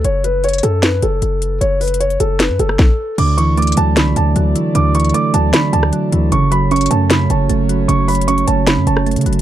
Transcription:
0.04 0.61 F#1 loud
0.04 0.22 C#5 medium
0.04 closed hi-hat medium
0.24 0.42 B4 medium
0.24 closed hi-hat medium
0.44 0.62 C#5 medium
0.44 closed hi-hat medium
0.49 closed hi-hat medium
0.53 closed hi-hat medium
0.58 closed hi-hat medium
0.63 1.01 F#2 loud
0.63 0.81 A4 medium
0.63 closed hi-hat medium
0.83 1.01 B4 medium
0.83 snare loud
0.83 closed hi-hat medium
1.02 1.21 F#1 loud
1.02 1.58 A4 medium
1.02 closed hi-hat medium
1.22 1.60 F#1 loud
1.22 closed hi-hat medium
1.42 closed hi-hat medium
1.61 2.18 F#1 loud
1.61 1.79 C#5 medium
1.61 closed hi-hat medium
1.81 1.99 B4 medium
1.81 closed hi-hat soft
1.81 open hi-hat medium
1.88 closed hi-hat medium
1.94 closed hi-hat medium
2.00 2.18 C#5 medium
2.00 closed hi-hat medium
2.10 closed hi-hat medium
2.20 2.51 F#1 loud
2.20 2.38 A4 medium
2.20 closed hi-hat medium
2.39 2.57 B4 medium
2.39 snare loud
2.39 closed hi-hat medium
2.50 2.59 F#2 loud
2.59 2.78 F#1 loud
2.59 3.15 A4 medium
2.59 closed hi-hat medium
2.69 cross-stick medium
2.79 kick loud
2.79 snare medium
3.18 3.75 D2 loud
3.18 3.95 D3 medium
3.18 9.42 F#3 medium
3.18 6.29 E4 medium
3.18 9.42 A4 medium
3.18 6.29 D5 medium
3.18 3.36 D6 medium
3.18 closed hi-hat medium
3.18 crash loud
3.38 4.36 E3 medium
3.38 3.55 C#6 medium
3.38 closed hi-hat medium
3.57 4.55 A3 medium
3.57 3.75 D6 medium
3.57 closed hi-hat medium
3.62 closed hi-hat medium
3.67 closed hi-hat medium
3.72 closed hi-hat medium
3.77 3.98 D2 loud
3.77 4.35 F#3 medium
3.77 3.95 A5 medium
3.77 closed hi-hat medium
3.96 4.15 C#2 loud
3.96 4.74 D3 medium
3.96 4.15 B5 medium
3.96 snare loud
3.96 closed hi-hat medium
4.16 4.35 D2 loud
4.16 4.72 A5 medium
4.16 closed hi-hat medium
4.36 4.55 D2 loud
4.36 5.33 F#3 medium
4.36 closed hi-hat medium
4.56 4.94 E3 medium
4.56 closed hi-hat medium
4.75 5.13 D2 loud
4.75 5.52 D3 loud
4.75 4.93 D6 medium
4.75 closed hi-hat medium
4.95 5.93 E3 medium
4.95 5.13 C#6 medium
4.95 closed hi-hat medium
5.00 closed hi-hat medium
5.05 closed hi-hat medium
5.09 closed hi-hat soft
5.14 6.12 A3 loud
5.14 5.32 D6 medium
5.14 closed hi-hat medium
5.34 5.53 D2 loud
5.34 5.92 F#3 medium
5.34 5.52 A5 medium
5.34 closed hi-hat medium
5.53 6.32 D3 medium
5.53 5.71 B5 medium
5.53 snare loud
5.53 closed hi-hat medium
5.73 5.92 D2 loud
5.73 6.28 A5 medium
5.73 closed hi-hat medium
5.83 cross-stick medium
5.93 6.32 F#3 medium
5.93 closed hi-hat medium
6.12 6.31 D2 loud
6.12 6.32 E3 medium
6.12 closed hi-hat medium
6.32 6.88 F#1 loud
6.32 7.09 C#3 loud
6.32 9.42 C#4 medium
6.32 9.42 C#5 loud
6.32 6.50 C#6 medium
6.32 closed hi-hat medium
6.51 7.49 F#3 medium
6.51 6.69 B5 medium
6.51 closed hi-hat medium
6.71 7.69 C#4 loud
6.71 6.89 C#6 loud
6.71 closed hi-hat medium
6.76 closed hi-hat medium
6.81 closed hi-hat medium
6.86 closed hi-hat medium
6.91 7.28 F#2 loud
6.91 7.48 A3 medium
6.91 7.09 A5 medium
6.91 closed hi-hat medium
7.10 7.88 C#3 medium
7.10 7.28 B5 medium
7.10 snare loud
7.10 closed hi-hat medium
7.30 7.49 F#1 loud
7.30 7.85 A5 medium
7.30 closed hi-hat medium
7.49 7.87 F#1 loud
7.49 8.46 A3 loud
7.49 closed hi-hat medium
7.69 8.07 F#3 medium
7.69 closed hi-hat medium
7.88 8.45 F#1 loud
7.88 8.66 C#3 medium
7.88 8.06 C#6 medium
7.88 closed hi-hat medium
8.08 9.06 F#3 medium
8.08 8.26 B5 medium
8.08 closed hi-hat soft
8.08 open hi-hat medium
8.15 closed hi-hat medium
8.21 closed hi-hat medium
8.28 9.26 C#4 loud
8.28 8.46 C#6 medium
8.28 closed hi-hat medium
8.38 closed hi-hat medium
8.47 8.79 F#1 loud
8.47 9.05 A3 medium
8.47 8.65 A5 medium
8.47 closed hi-hat medium
8.67 9.42 C#3 medium
8.67 8.85 B5 medium
8.67 snare loud
8.67 closed hi-hat medium
8.77 8.86 F#2 loud
8.87 9.18 F#1 loud
8.87 9.42 A5 medium
8.87 closed hi-hat medium
8.97 cross-stick medium
9.06 9.42 A3 medium
9.06 closed hi-hat soft
9.11 closed hi-hat medium
9.16 9.26 C#3 loud
9.16 closed hi-hat medium
9.21 closed hi-hat medium
9.26 9.42 F#1 loud
9.26 9.42 F#3 medium
9.26 closed hi-hat medium
9.33 closed hi-hat medium

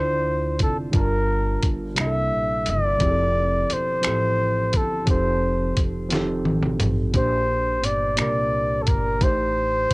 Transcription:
0.00 0.56 D2 medium
0.00 0.96 D3 medium
0.00 0.92 D4 medium
0.00 0.96 E4 medium
0.00 0.94 F4 medium
0.00 0.61 C5 medium
0.00 0.71 D5 medium
0.00 0.96 F5 soft
0.59 0.91 F1 medium
0.59 0.77 A4 medium
0.59 kick medium
0.59 closed hi-hat medium
0.91 1.59 G1 medium
0.91 1.72 G3 medium
0.91 1.72 D4 medium
0.91 1.73 F4 medium
0.91 kick loud
0.91 closed hi-hat medium
0.95 1.69 A#4 medium
0.95 1.74 A#4 medium
0.95 1.74 A5 medium
1.63 1.94 G1 medium
1.63 kick medium
1.63 closed hi-hat medium
1.95 2.33 C2 medium
1.95 2.75 C3 medium
1.95 2.76 G3 medium
1.95 2.76 A#3 medium
1.95 2.77 D4 medium
1.95 finger snap loud
1.95 closed hi-hat medium
1.99 2.77 E4 medium
1.99 2.05 G4 medium
1.99 2.72 E5 loud
2.06 2.81 A4 medium
2.33 2.69 A#1 medium
2.66 2.98 G1 medium
2.66 closed hi-hat medium
2.70 3.74 D5 loud
2.98 3.66 F1 loud
2.98 3.79 F3 medium
2.98 3.79 C4 medium
2.98 3.80 E4 medium
2.98 kick loud
2.98 closed hi-hat medium
3.02 3.81 G4 medium
3.02 3.09 G#4 medium
3.10 3.85 A4 medium
3.70 4.02 E1 medium
3.70 4.78 C5 medium
3.70 closed hi-hat medium
4.02 4.82 F3 medium
4.02 4.83 C4 medium
4.02 4.84 E4 medium
4.02 finger snap medium
4.02 closed hi-hat medium
4.06 4.70 A1 medium
4.06 4.84 G4 medium
4.06 4.85 A4 medium
4.73 5.05 G1 medium
4.73 5.09 A4 medium
4.73 kick medium
4.73 closed hi-hat medium
5.05 5.73 F1 medium
5.05 5.86 F3 medium
5.05 5.86 C4 medium
5.05 5.87 D#4 medium
5.05 kick loud
5.05 closed hi-hat medium
5.10 5.88 G4 medium
5.10 5.88 A4 medium
5.10 5.83 C5 medium
5.77 6.47 F1 medium
5.77 kick medium
5.77 closed hi-hat medium
6.09 6.89 F3 medium
6.09 6.90 C4 medium
6.09 6.91 D#4 medium
6.09 6.91 G4 medium
6.09 snare soft
6.09 closed hi-hat medium
6.14 6.92 A4 medium
6.45 6.77 A1 medium
6.45 high tom medium
6.63 mid tom medium
6.80 7.12 A1 medium
6.80 closed hi-hat medium
6.80 mid tom medium
7.12 7.84 A#1 medium
7.12 7.92 A#2 medium
7.12 7.93 A#3 medium
7.12 7.94 D4 medium
7.12 kick medium
7.12 closed hi-hat medium
7.16 7.94 G4 medium
7.16 7.87 C5 medium
7.16 7.95 C5 medium
7.84 8.15 G1 medium
7.84 8.19 D5 medium
7.84 closed hi-hat medium
8.16 8.83 C2 medium
8.16 8.96 A#2 medium
8.16 8.97 A#3 medium
8.16 8.97 D4 medium
8.16 8.84 D5 medium
8.16 finger snap medium
8.16 closed hi-hat medium
8.20 8.98 G4 medium
8.20 8.99 A#4 medium
8.82 8.89 A4 medium
8.87 9.19 G1 medium
8.87 9.24 A#4 medium
8.87 kick medium
8.87 closed hi-hat medium
9.19 9.87 A1 medium
9.19 9.94 A2 medium
9.19 9.94 A3 medium
9.19 9.94 D#4 medium
9.19 9.94 C5 loud
9.19 kick loud
9.19 closed hi-hat medium
9.23 9.94 G4 medium
9.23 9.94 C5 medium

